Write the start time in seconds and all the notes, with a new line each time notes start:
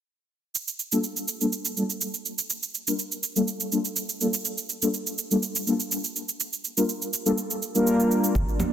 0.55 shaker
0.68 shaker
0.79 shaker
0.92 G3 A#3 D4 F4 A4, shaker
1.04 shaker
1.17 shaker
1.28 shaker
1.41 G3 A#3 D4 F4 A4, shaker
1.53 shaker
1.65 shaker
1.77 G3 A#3 D4 F4 A4, shaker
1.90 shaker
2.01 shaker
2.14 shaker
2.26 shaker
2.38 shaker
2.50 shaker
2.63 shaker
2.75 shaker
2.87 G3 A#3 D4 F4 A#4, shaker
2.99 shaker
3.12 shaker
3.23 shaker
3.36 G3 A#3 D4 F4 A4, shaker
3.48 shaker
3.60 shaker
3.72 G3 A#3 D4 F4 A4, shaker
3.85 shaker
3.96 shaker
4.09 shaker
4.21 G3 A#3 D4 F4 A4, shaker
4.34 shaker
4.45 shaker
4.58 shaker
4.69 shaker
4.82 G3 A#3 D4 F4 A4, shaker
4.94 shaker
5.07 shaker
5.18 shaker
5.31 G3 A#3 D4 F4 A4, shaker
5.43 shaker
5.56 shaker
5.67 G3 A#3 D4 F4 A4, shaker
5.80 shaker
5.92 shaker
6.04 shaker
6.16 shaker
6.29 shaker
6.40 shaker
6.53 shaker
6.64 shaker
6.77 G3 A#3 D4 F4 A#4, shaker
6.89 shaker
7.02 shaker
7.13 shaker
7.26 G3 A#3 D4 F4 A4, shaker
7.38 shaker
7.51 shaker
7.62 shaker
7.75 G3 A#3 D4 F4 A#4, shaker
7.87 shaker
8.00 shaker
8.11 shaker
8.24 shaker
8.35 G1 A#3 D4 F4 D5, kick, shaker
8.49 shaker
8.60 high conga, low conga, shaker